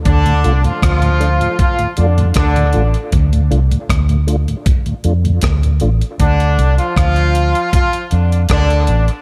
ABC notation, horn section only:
X:1
M:4/4
L:1/16
Q:1/4=78
K:Dm
V:1 name="Horn section"
[D,D]3 [F,F] [F,F]4 [F,F]2 [D,D]2 [D,D]3 z | z16 | [D,D]3 [F,F] [F,F]4 [F,F]2 [D,D]2 [D,D]3 z |]